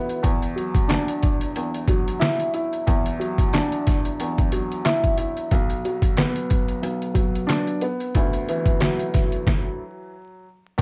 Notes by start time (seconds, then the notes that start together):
Already playing: D2 E3 F#3 B3
0.09 closed hi-hat
0.23 E2, kick, closed hi-hat
0.42 closed hi-hat
0.56 F#3, closed hi-hat
0.75 kick, closed hi-hat
0.88 D4, snare, clap, closed hi-hat
1.08 closed hi-hat
1.23 kick, closed hi-hat
1.41 closed hi-hat
1.56 E2, closed hi-hat
1.74 closed hi-hat
1.88 F#3, kick, closed hi-hat
2.08 closed hi-hat
2.19 E4, snare, clap, closed hi-hat
2.40 closed hi-hat
2.54 E4, closed hi-hat
2.73 closed hi-hat
2.87 E2, kick, closed hi-hat
3.06 closed hi-hat
3.20 F#3, closed hi-hat
3.38 kick, closed hi-hat
3.53 D4, snare, clap, closed hi-hat
3.72 closed hi-hat
3.87 kick, snare, closed hi-hat
4.05 closed hi-hat
4.20 E2, closed hi-hat
4.38 kick, closed hi-hat
4.52 F#3, closed hi-hat
4.72 closed hi-hat
4.85 E4, snare, clap, closed hi-hat
5.04 kick, closed hi-hat
5.18 E4, closed hi-hat
5.37 closed hi-hat
5.51 B1, kick, closed hi-hat
5.70 closed hi-hat
5.85 F#3, closed hi-hat
6.02 kick, closed hi-hat
6.17 B3, snare, clap, closed hi-hat
6.36 closed hi-hat
6.50 kick, closed hi-hat
6.68 closed hi-hat
6.83 B1, closed hi-hat
7.02 closed hi-hat
7.14 F#3, kick, closed hi-hat
7.35 closed hi-hat
7.47 D4, snare, clap, closed hi-hat
7.67 closed hi-hat
7.81 B3, closed hi-hat
8.00 closed hi-hat
8.15 D2, kick, closed hi-hat
8.33 closed hi-hat
8.49 E3, closed hi-hat
8.66 kick, closed hi-hat
8.80 F#3, snare, clap, closed hi-hat
8.99 closed hi-hat
9.14 kick, snare, closed hi-hat
9.32 closed hi-hat
9.47 kick, snare
10.78 E2